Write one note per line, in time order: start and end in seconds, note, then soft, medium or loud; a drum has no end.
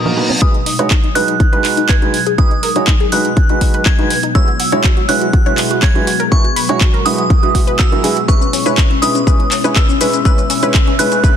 0.00 0.38 A#2 medium
0.00 0.38 B2 medium
0.00 0.38 F#3 medium
0.00 0.38 D#4 medium
0.00 reverse cymbal medium
0.05 0.15 A#3 medium
0.05 0.15 D#4 medium
0.05 0.15 F#4 medium
0.05 0.15 A#4 medium
0.05 low conga medium
0.17 0.27 A#3 medium
0.17 0.27 D#4 medium
0.17 0.27 F#4 medium
0.17 0.27 B4 loud
0.30 high bongo medium
0.30 high conga medium
0.42 11.37 B2 medium
0.42 4.31 F#3 medium
0.42 0.52 G#3 medium
0.42 11.37 G#3 medium
0.42 0.52 D#4 medium
0.42 4.31 D#4 medium
0.42 0.52 F#4 medium
0.42 0.49 B4 loud
0.42 0.52 B4 medium
0.42 1.18 D#6 loud
0.42 kick loud
0.42 closed hi-hat medium
0.54 0.61 D#4 medium
0.54 closed hi-hat soft
0.66 0.74 D#4 medium
0.66 open hi-hat loud
0.79 0.88 G#3 medium
0.79 0.88 D#4 medium
0.79 0.88 F#4 medium
0.79 0.86 B4 medium
0.79 0.88 C#5 loud
0.79 closed hi-hat medium
0.91 0.98 D#4 medium
0.91 kick loud
0.91 clap loud
0.91 closed hi-hat medium
1.04 1.10 D#4 medium
1.04 closed hi-hat soft
1.15 1.31 G#3 medium
1.15 1.31 D#4 medium
1.15 1.31 F#4 medium
1.15 1.23 B4 medium
1.15 1.31 B4 loud
1.15 1.91 F#6 loud
1.15 open hi-hat medium
1.28 1.35 D#4 medium
1.28 closed hi-hat medium
1.40 1.47 D#4 medium
1.40 kick loud
1.40 closed hi-hat medium
1.53 1.99 G#3 medium
1.53 1.99 D#4 medium
1.53 1.99 F#4 medium
1.53 1.60 B4 medium
1.53 1.99 B4 medium
1.53 closed hi-hat soft
1.64 1.72 D#4 medium
1.64 clap medium
1.64 open hi-hat loud
1.77 1.84 D#4 medium
1.77 closed hi-hat medium
1.89 1.97 B4 medium
1.89 2.40 G#6 loud
1.89 kick loud
1.89 clap loud
1.89 closed hi-hat medium
2.02 2.11 G#3 medium
2.02 2.11 D#4 medium
2.02 2.09 D#4 medium
2.02 2.11 F#4 medium
2.02 2.11 B4 medium
2.02 closed hi-hat soft
2.14 2.21 D#4 medium
2.14 open hi-hat medium
2.26 2.33 G#4 medium
2.26 closed hi-hat medium
2.38 2.48 G#3 medium
2.38 2.46 D#4 medium
2.38 2.48 D#4 medium
2.38 2.48 F#4 medium
2.38 2.48 B4 medium
2.38 3.14 D#6 loud
2.38 kick loud
2.38 closed hi-hat medium
2.51 2.58 D#4 medium
2.51 closed hi-hat soft
2.63 2.70 A#4 medium
2.63 open hi-hat loud
2.76 2.85 G#3 medium
2.76 2.85 D#4 medium
2.76 2.83 D#4 medium
2.76 2.85 F#4 medium
2.76 2.85 C#5 loud
2.76 closed hi-hat medium
2.87 2.95 D#4 medium
2.87 kick loud
2.87 clap loud
2.87 closed hi-hat medium
3.00 3.07 G#4 loud
3.00 closed hi-hat soft
3.12 3.28 G#3 medium
3.12 3.28 D#4 medium
3.12 3.20 D#4 medium
3.12 3.28 F#4 medium
3.12 3.28 B4 loud
3.12 3.88 F#6 loud
3.12 open hi-hat loud
3.25 3.32 D#4 medium
3.25 closed hi-hat soft
3.37 kick loud
3.37 closed hi-hat medium
3.49 3.96 G#3 medium
3.49 3.96 D#4 medium
3.49 3.56 D#4 medium
3.49 3.96 F#4 medium
3.49 3.96 B4 medium
3.49 closed hi-hat soft
3.61 3.69 D#4 medium
3.61 kick medium
3.61 open hi-hat loud
3.74 3.81 B4 medium
3.74 closed hi-hat medium
3.86 3.93 D#4 medium
3.86 4.37 G#6 loud
3.86 kick loud
3.86 clap loud
3.86 closed hi-hat medium
3.99 4.08 G#3 medium
3.99 4.08 D#4 medium
3.99 4.06 D#4 medium
3.99 4.08 F#4 medium
3.99 4.08 B4 medium
3.99 closed hi-hat soft
4.10 4.18 B4 medium
4.10 open hi-hat loud
4.23 4.30 D#4 medium
4.23 closed hi-hat medium
4.35 8.25 F#3 medium
4.35 4.45 G#3 medium
4.35 4.45 E4 medium
4.35 6.30 E4 medium
4.35 4.45 F#4 medium
4.35 4.45 B4 medium
4.35 4.43 C#5 loud
4.35 5.11 E6 loud
4.35 kick loud
4.35 closed hi-hat soft
4.48 4.55 F#4 medium
4.48 closed hi-hat soft
4.60 4.67 F#4 medium
4.60 open hi-hat loud
4.72 4.82 G#3 loud
4.72 4.82 E4 medium
4.72 4.82 F#4 medium
4.72 4.79 C#5 medium
4.72 4.82 C#5 loud
4.72 closed hi-hat medium
4.84 4.92 F#4 medium
4.84 kick loud
4.84 clap loud
4.84 closed hi-hat medium
4.97 5.04 F#4 medium
4.97 closed hi-hat soft
5.09 5.25 G#3 medium
5.09 5.25 E4 medium
5.09 5.25 F#4 medium
5.09 5.25 B4 loud
5.09 5.16 C#5 medium
5.09 5.85 F#6 loud
5.09 open hi-hat loud
5.21 5.28 F#4 medium
5.21 closed hi-hat soft
5.33 5.41 F#4 medium
5.33 kick loud
5.33 closed hi-hat soft
5.46 5.92 G#3 medium
5.46 5.92 E4 medium
5.46 5.92 F#4 medium
5.46 5.92 B4 medium
5.46 5.53 C#5 medium
5.46 closed hi-hat soft
5.58 5.65 F#4 medium
5.58 clap medium
5.58 open hi-hat loud
5.71 5.78 F#4 medium
5.71 closed hi-hat soft
5.82 5.90 C#5 loud
5.82 6.33 G#6 loud
5.82 kick loud
5.82 clap loud
5.82 closed hi-hat medium
5.95 6.05 G#3 medium
5.95 6.05 E4 medium
5.95 6.02 F#4 medium
5.95 6.05 F#4 medium
5.95 6.05 B4 medium
5.95 closed hi-hat soft
6.07 6.14 F#4 medium
6.07 open hi-hat loud
6.20 6.27 A#4 medium
6.20 closed hi-hat soft
6.32 6.42 G#3 medium
6.32 6.42 E4 medium
6.32 6.39 F#4 medium
6.32 8.27 F#4 medium
6.32 6.42 F#4 medium
6.32 6.42 B4 loud
6.32 7.08 C#6 loud
6.32 kick loud
6.32 closed hi-hat soft
6.44 6.51 F#4 medium
6.44 closed hi-hat soft
6.56 6.64 B4 loud
6.56 open hi-hat loud
6.69 6.79 G#3 loud
6.69 6.79 E4 medium
6.69 6.76 F#4 medium
6.69 6.79 F#4 medium
6.69 6.79 C#5 loud
6.69 closed hi-hat soft
6.81 6.88 F#4 medium
6.81 kick loud
6.81 clap loud
6.81 closed hi-hat medium
6.94 7.00 A#4 medium
6.94 closed hi-hat soft
7.06 7.21 G#3 medium
7.06 7.21 E4 medium
7.06 7.13 F#4 medium
7.06 7.21 F#4 medium
7.06 7.21 B4 loud
7.06 7.82 D#6 loud
7.06 open hi-hat medium
7.18 7.25 F#4 medium
7.18 closed hi-hat soft
7.30 kick loud
7.30 closed hi-hat soft
7.43 7.89 G#3 medium
7.43 7.89 E4 medium
7.43 7.50 F#4 medium
7.43 7.89 F#4 medium
7.43 7.89 B4 medium
7.43 closed hi-hat soft
7.55 7.62 F#4 medium
7.55 kick medium
7.55 open hi-hat loud
7.67 7.74 B4 loud
7.67 closed hi-hat soft
7.79 7.87 F#4 medium
7.79 8.30 E6 medium
7.79 kick loud
7.79 clap loud
7.79 closed hi-hat soft
7.92 8.01 G#3 medium
7.92 8.01 E4 medium
7.92 7.99 F#4 medium
7.92 8.01 F#4 medium
7.92 8.01 A#4 medium
7.92 closed hi-hat soft
8.04 8.14 G#3 medium
8.04 8.14 E4 medium
8.04 8.14 F#4 medium
8.04 8.11 G#4 medium
8.04 8.14 B4 loud
8.04 open hi-hat medium
8.16 8.23 F#4 medium
8.16 closed hi-hat soft
8.28 8.39 G#3 medium
8.28 11.37 C#4 medium
8.28 8.39 C#4 medium
8.28 11.37 E4 medium
8.28 8.39 E4 medium
8.28 8.36 B4 medium
8.28 8.39 B4 medium
8.28 9.04 C#6 loud
8.28 kick loud
8.28 closed hi-hat soft
8.28 riser medium
8.28 shaker soft
8.41 8.48 C#4 medium
8.41 closed hi-hat soft
8.41 shaker soft
8.53 8.60 C#4 medium
8.53 open hi-hat loud
8.53 shaker medium
8.66 8.75 G#3 medium
8.66 8.75 C#4 medium
8.66 8.75 E4 medium
8.66 8.73 B4 medium
8.66 8.75 C#5 loud
8.66 closed hi-hat soft
8.66 shaker soft
8.78 8.85 C#4 medium
8.78 kick loud
8.78 clap loud
8.78 closed hi-hat medium
8.78 shaker soft
8.90 8.97 C#4 medium
8.90 closed hi-hat soft
9.02 9.18 G#3 medium
9.02 9.18 C#4 medium
9.02 9.18 E4 medium
9.02 9.10 B4 medium
9.02 9.18 B4 medium
9.02 9.78 D#6 loud
9.02 open hi-hat medium
9.02 shaker medium
9.15 9.22 C#4 medium
9.15 closed hi-hat soft
9.15 shaker soft
9.27 9.37 G#3 medium
9.27 9.37 C#4 medium
9.27 9.37 E4 medium
9.27 9.34 B4 medium
9.27 9.37 B4 medium
9.27 kick loud
9.27 closed hi-hat soft
9.27 shaker soft
9.40 9.47 C#4 medium
9.40 closed hi-hat soft
9.51 9.59 C#4 medium
9.51 clap medium
9.51 open hi-hat loud
9.51 shaker medium
9.64 9.74 G#3 medium
9.64 9.74 C#4 medium
9.64 9.74 E4 medium
9.64 9.71 B4 medium
9.64 9.74 C#5 loud
9.64 closed hi-hat soft
9.64 shaker soft
9.76 9.84 C#4 medium
9.76 10.24 E6 medium
9.76 kick loud
9.76 clap loud
9.76 closed hi-hat medium
9.76 shaker soft
9.89 9.96 C#4 medium
9.89 closed hi-hat soft
9.89 shaker soft
10.01 10.16 G#3 medium
10.01 10.17 C#4 medium
10.01 10.17 E4 medium
10.01 10.17 B4 loud
10.01 10.08 B4 medium
10.01 open hi-hat medium
10.01 shaker medium
10.13 10.20 C#4 medium
10.13 closed hi-hat soft
10.13 shaker soft
10.25 10.35 G#3 medium
10.25 10.35 C#4 medium
10.25 10.35 E4 medium
10.25 10.33 B4 loud
10.25 11.01 E6 loud
10.25 kick loud
10.25 closed hi-hat medium
10.25 shaker soft
10.38 10.45 C#4 medium
10.38 closed hi-hat soft
10.38 shaker soft
10.50 10.57 C#4 medium
10.50 open hi-hat loud
10.50 shaker medium
10.63 10.72 G#3 medium
10.63 10.72 C#4 medium
10.63 10.72 E4 medium
10.63 10.70 B4 medium
10.63 10.72 C#5 loud
10.63 closed hi-hat medium
10.63 shaker soft
10.74 10.82 C#4 medium
10.74 kick loud
10.74 clap loud
10.74 closed hi-hat medium
10.74 shaker soft
10.87 10.94 C#4 medium
10.87 closed hi-hat soft
10.99 11.15 G#3 medium
10.99 11.15 C#4 medium
10.99 11.15 E4 medium
10.99 11.06 B4 medium
10.99 11.15 B4 loud
10.99 11.37 F#6 loud
10.99 open hi-hat medium
10.99 shaker medium
11.12 11.19 C#4 medium
11.12 closed hi-hat medium
11.12 shaker soft
11.24 11.34 G#3 medium
11.24 11.34 C#4 medium
11.24 11.34 E4 medium
11.24 11.34 B4 medium
11.24 11.31 B4 loud
11.24 kick loud
11.24 closed hi-hat medium
11.24 shaker soft